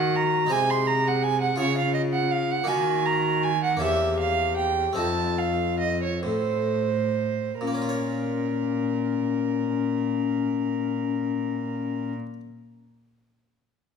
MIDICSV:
0, 0, Header, 1, 5, 480
1, 0, Start_track
1, 0, Key_signature, -5, "minor"
1, 0, Tempo, 721154
1, 334, Time_signature, 6, 3, 24, 8
1, 1294, Tempo, 743494
1, 2254, Tempo, 775194
1, 3214, Tempo, 825309
1, 3694, Tempo, 875912
1, 4174, Tempo, 927357
1, 7943, End_track
2, 0, Start_track
2, 0, Title_t, "Violin"
2, 0, Program_c, 0, 40
2, 0, Note_on_c, 0, 78, 84
2, 102, Note_on_c, 0, 82, 81
2, 112, Note_off_c, 0, 78, 0
2, 338, Note_on_c, 0, 80, 92
2, 348, Note_off_c, 0, 82, 0
2, 465, Note_on_c, 0, 84, 79
2, 475, Note_off_c, 0, 80, 0
2, 577, Note_on_c, 0, 82, 79
2, 587, Note_off_c, 0, 84, 0
2, 713, Note_on_c, 0, 78, 73
2, 723, Note_off_c, 0, 82, 0
2, 818, Note_on_c, 0, 80, 84
2, 828, Note_off_c, 0, 78, 0
2, 936, Note_off_c, 0, 80, 0
2, 940, Note_on_c, 0, 78, 71
2, 1055, Note_off_c, 0, 78, 0
2, 1061, Note_on_c, 0, 73, 85
2, 1175, Note_off_c, 0, 73, 0
2, 1185, Note_on_c, 0, 77, 70
2, 1286, Note_off_c, 0, 77, 0
2, 1290, Note_on_c, 0, 75, 86
2, 1338, Note_off_c, 0, 75, 0
2, 1416, Note_on_c, 0, 78, 75
2, 1529, Note_on_c, 0, 77, 74
2, 1539, Note_off_c, 0, 78, 0
2, 1660, Note_on_c, 0, 78, 81
2, 1669, Note_off_c, 0, 77, 0
2, 1765, Note_on_c, 0, 80, 86
2, 1775, Note_off_c, 0, 78, 0
2, 2008, Note_on_c, 0, 82, 80
2, 2018, Note_off_c, 0, 80, 0
2, 2254, Note_on_c, 0, 80, 85
2, 2263, Note_off_c, 0, 82, 0
2, 2372, Note_off_c, 0, 80, 0
2, 2381, Note_on_c, 0, 78, 70
2, 2485, Note_off_c, 0, 78, 0
2, 2489, Note_on_c, 0, 76, 81
2, 2723, Note_off_c, 0, 76, 0
2, 2727, Note_on_c, 0, 77, 83
2, 2955, Note_off_c, 0, 77, 0
2, 2959, Note_on_c, 0, 79, 77
2, 3200, Note_off_c, 0, 79, 0
2, 3203, Note_on_c, 0, 81, 76
2, 3446, Note_on_c, 0, 77, 68
2, 3454, Note_off_c, 0, 81, 0
2, 3684, Note_off_c, 0, 77, 0
2, 3687, Note_on_c, 0, 75, 76
2, 3806, Note_off_c, 0, 75, 0
2, 3818, Note_on_c, 0, 73, 64
2, 3930, Note_off_c, 0, 73, 0
2, 3933, Note_on_c, 0, 72, 67
2, 4644, Note_off_c, 0, 72, 0
2, 4654, Note_on_c, 0, 70, 55
2, 6991, Note_off_c, 0, 70, 0
2, 7943, End_track
3, 0, Start_track
3, 0, Title_t, "Recorder"
3, 0, Program_c, 1, 74
3, 0, Note_on_c, 1, 66, 62
3, 337, Note_on_c, 1, 68, 73
3, 347, Note_off_c, 1, 66, 0
3, 1051, Note_off_c, 1, 68, 0
3, 1055, Note_on_c, 1, 65, 55
3, 1754, Note_off_c, 1, 65, 0
3, 1768, Note_on_c, 1, 66, 73
3, 2298, Note_off_c, 1, 66, 0
3, 2494, Note_on_c, 1, 67, 59
3, 3218, Note_on_c, 1, 65, 62
3, 3227, Note_off_c, 1, 67, 0
3, 3930, Note_off_c, 1, 65, 0
3, 3933, Note_on_c, 1, 69, 49
3, 4287, Note_off_c, 1, 69, 0
3, 4658, Note_on_c, 1, 61, 51
3, 6995, Note_off_c, 1, 61, 0
3, 7943, End_track
4, 0, Start_track
4, 0, Title_t, "Harpsichord"
4, 0, Program_c, 2, 6
4, 0, Note_on_c, 2, 51, 47
4, 0, Note_on_c, 2, 58, 44
4, 0, Note_on_c, 2, 63, 39
4, 0, Note_on_c, 2, 70, 48
4, 301, Note_off_c, 2, 58, 0
4, 308, Note_off_c, 2, 63, 0
4, 309, Note_on_c, 2, 56, 48
4, 311, Note_off_c, 2, 70, 0
4, 312, Note_off_c, 2, 51, 0
4, 321, Note_on_c, 2, 63, 42
4, 330, Note_on_c, 2, 72, 43
4, 337, Note_on_c, 2, 48, 52
4, 1020, Note_off_c, 2, 56, 0
4, 1026, Note_off_c, 2, 63, 0
4, 1029, Note_off_c, 2, 48, 0
4, 1030, Note_off_c, 2, 72, 0
4, 1037, Note_on_c, 2, 65, 41
4, 1047, Note_on_c, 2, 68, 45
4, 1057, Note_on_c, 2, 49, 47
4, 1738, Note_off_c, 2, 65, 0
4, 1743, Note_off_c, 2, 49, 0
4, 1743, Note_off_c, 2, 68, 0
4, 1743, Note_on_c, 2, 58, 43
4, 1749, Note_on_c, 2, 63, 42
4, 1763, Note_on_c, 2, 66, 45
4, 1769, Note_on_c, 2, 51, 47
4, 2456, Note_off_c, 2, 58, 0
4, 2461, Note_off_c, 2, 63, 0
4, 2463, Note_on_c, 2, 58, 46
4, 2467, Note_off_c, 2, 51, 0
4, 2468, Note_off_c, 2, 66, 0
4, 2475, Note_on_c, 2, 61, 40
4, 2483, Note_on_c, 2, 67, 41
4, 2495, Note_on_c, 2, 40, 49
4, 3178, Note_off_c, 2, 58, 0
4, 3181, Note_on_c, 2, 57, 42
4, 3184, Note_off_c, 2, 61, 0
4, 3188, Note_off_c, 2, 67, 0
4, 3191, Note_off_c, 2, 40, 0
4, 3192, Note_on_c, 2, 60, 39
4, 3198, Note_on_c, 2, 63, 43
4, 3208, Note_on_c, 2, 41, 39
4, 3905, Note_off_c, 2, 41, 0
4, 3926, Note_on_c, 2, 45, 46
4, 4622, Note_off_c, 2, 57, 0
4, 4627, Note_off_c, 2, 60, 0
4, 4629, Note_off_c, 2, 63, 0
4, 4634, Note_off_c, 2, 45, 0
4, 4655, Note_on_c, 2, 46, 41
4, 4687, Note_on_c, 2, 58, 40
4, 4724, Note_on_c, 2, 61, 36
4, 4762, Note_on_c, 2, 65, 41
4, 4799, Note_on_c, 2, 73, 36
4, 6992, Note_off_c, 2, 46, 0
4, 7024, Note_off_c, 2, 58, 0
4, 7061, Note_off_c, 2, 61, 0
4, 7099, Note_off_c, 2, 65, 0
4, 7136, Note_off_c, 2, 73, 0
4, 7943, End_track
5, 0, Start_track
5, 0, Title_t, "Cello"
5, 0, Program_c, 3, 42
5, 0, Note_on_c, 3, 51, 65
5, 338, Note_off_c, 3, 51, 0
5, 344, Note_on_c, 3, 48, 66
5, 1045, Note_off_c, 3, 48, 0
5, 1060, Note_on_c, 3, 49, 60
5, 1757, Note_off_c, 3, 49, 0
5, 1776, Note_on_c, 3, 51, 66
5, 2481, Note_off_c, 3, 51, 0
5, 2496, Note_on_c, 3, 40, 63
5, 3202, Note_off_c, 3, 40, 0
5, 3217, Note_on_c, 3, 41, 62
5, 3935, Note_on_c, 3, 45, 51
5, 3943, Note_off_c, 3, 41, 0
5, 4655, Note_off_c, 3, 45, 0
5, 4658, Note_on_c, 3, 46, 54
5, 6995, Note_off_c, 3, 46, 0
5, 7943, End_track
0, 0, End_of_file